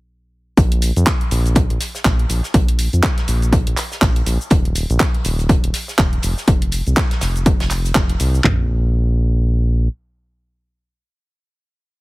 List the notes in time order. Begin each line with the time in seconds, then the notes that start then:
0.57 A#1, kick, closed hi-hat, cabasa
0.72 closed hi-hat
0.82 closed hi-hat, open hi-hat, cabasa
0.96 F2, closed hi-hat, cabasa
1.06 kick, snare, clap, closed hi-hat
1.21 closed hi-hat
1.31 A#1, closed hi-hat, open hi-hat, cabasa
1.45 closed hi-hat, cabasa
1.55 kick, closed hi-hat, cabasa
1.70 A#1, closed hi-hat
1.80 snare, closed hi-hat, open hi-hat, cabasa
1.95 snare, cabasa
2.05 A#1, kick, snare, clap, closed hi-hat, cabasa
2.19 closed hi-hat
2.29 A#1, closed hi-hat, open hi-hat, cabasa
2.43 snare, cabasa
2.54 A#1, kick, closed hi-hat, cabasa
2.68 closed hi-hat
2.79 closed hi-hat, open hi-hat, cabasa
2.93 F2, closed hi-hat, cabasa
3.03 kick, snare, clap, closed hi-hat, cabasa
3.18 snare, closed hi-hat
3.28 A#1, closed hi-hat, open hi-hat, cabasa
3.42 closed hi-hat, cabasa
3.52 kick, closed hi-hat, cabasa
3.67 A#1, closed hi-hat
3.77 clap, closed hi-hat, open hi-hat, cabasa
3.91 snare, cabasa
4.02 A#1, kick, snare, clap, closed hi-hat, cabasa
4.16 closed hi-hat
4.26 A#1, closed hi-hat, open hi-hat, cabasa
4.41 cabasa
4.50 D#1, kick, closed hi-hat, cabasa
4.65 closed hi-hat
4.75 closed hi-hat, open hi-hat, cabasa
4.90 A#1, closed hi-hat, cabasa
4.99 kick, snare, clap, closed hi-hat, cabasa
5.14 closed hi-hat
5.25 D#1, closed hi-hat, open hi-hat, cabasa
5.39 closed hi-hat, cabasa
5.49 kick, closed hi-hat, cabasa
5.64 D#1, closed hi-hat
5.74 snare, closed hi-hat, open hi-hat, cabasa
5.88 snare, cabasa
5.98 D#1, kick, snare, clap, closed hi-hat, cabasa
6.13 closed hi-hat
6.22 F1, closed hi-hat, open hi-hat, cabasa
6.37 snare, cabasa
6.48 F1, kick, closed hi-hat, cabasa
6.62 closed hi-hat
6.72 closed hi-hat, open hi-hat, cabasa
6.87 C2, closed hi-hat, cabasa
6.97 kick, snare, clap, closed hi-hat, cabasa
7.11 snare, closed hi-hat
7.21 F1, snare, closed hi-hat, open hi-hat, cabasa
7.36 closed hi-hat, cabasa
7.46 kick, closed hi-hat, cabasa
7.60 F1, snare, closed hi-hat
7.70 clap, open hi-hat, cabasa
7.85 closed hi-hat, cabasa
7.95 F1, kick, snare, clap, closed hi-hat, cabasa
8.10 closed hi-hat
8.20 C2, closed hi-hat, open hi-hat, cabasa
8.35 cabasa
8.44 A#1, kick, clap, floor tom